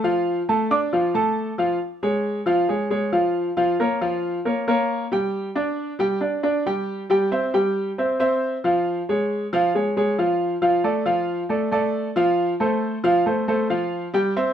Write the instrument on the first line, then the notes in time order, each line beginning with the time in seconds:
grand piano
0.04 F3 F4 F5
0.49 A3 A4 A5
0.71 D4 D5 D6
0.93 F3 F4 F5
1.14 A3 A4 A5
1.58 F3 F4 F5
2.03 G#3 G#4 C#5
2.46 F3 F4 F5
2.69 G#3 G#4 C#5
2.90 G#3 G#4 C#5
3.12 F3 F4 F5
3.57 F3 F4 F5
3.80 A#3 A#4 C#5
4.01 F3 F4 F5
4.45 A#3 A#4 C#5
4.68 A#3 A#4 C#5
5.12 G3 G4 G5
5.55 D4 D5
5.99 G3 G4 G5
6.21 D4 D5
6.43 D4 D5
6.66 G3 G4 G5
7.10 G3 G4 G5
7.31 C4 C5 E5
7.54 G3 G4 G5
7.98 C4 C5 E5
8.20 C4 C5 E5
8.64 F3 F4 F5
9.09 G#3 G#4 C#5
9.53 F3 F4 F5
9.75 G#3 G#4 C#5
9.97 G#3 G#4 C#5
10.18 F3 F4 F5
10.62 F3 F4 F5
10.84 A3 A4 D5
11.06 F3 F4 F5
11.49 A3 A4 D5
11.71 A3 A4 D5
12.16 F3 F4 F5
12.60 A3 A4 C5
13.04 F3 F4 F5
13.26 A3 A4 C5
13.48 A3 A4 C5
13.70 F3 F4 F5
14.14 G3 G4 G5
14.36 C4 C5 E5